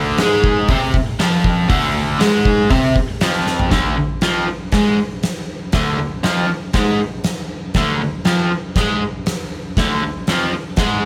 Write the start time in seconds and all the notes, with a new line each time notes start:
Already playing: D2 D3
0.18 G#2 G#3, snare, open hi-hat
0.44 kick
0.68 C3 C4, kick, open hi-hat
0.94 kick
1.19 F2 F3, snare, open hi-hat
1.44 kick
1.69 D2 D3, kick, open hi-hat
2.19 G#2 G#3, snare, open hi-hat
2.45 kick
2.70 C3 C4, kick, open hi-hat
2.96 kick
3.21 F2 F3, snare, open hi-hat
3.46 snare
3.59 floor tom
3.71 D2 D3, kick, snare, open hi-hat
3.98 D2
4.21 F2 F3, snare, open hi-hat
4.48 muted overdriven electric guitar stroke
4.72 G#2 G#3, kick, snare, open hi-hat
5.23 snare, open hi-hat
5.72 D2 D3, kick, snare, open hi-hat
5.99 D2
6.23 F2 F3, snare, open hi-hat
6.49 muted overdriven electric guitar stroke
6.73 G#2 G#3, kick, snare, open hi-hat
7.24 snare, open hi-hat
7.74 D2 D3, kick, snare, open hi-hat
8.02 D2
8.25 F2 F3, snare, open hi-hat
8.52 muted overdriven electric guitar stroke
8.76 G#2 G#3, kick, snare, open hi-hat
9.26 snare, open hi-hat
9.77 D2 D3, kick, snare, open hi-hat
10.03 D2
10.27 F2 F3, snare, open hi-hat
10.54 muted overdriven electric guitar stroke
10.76 G#2 G#3, kick, snare, open hi-hat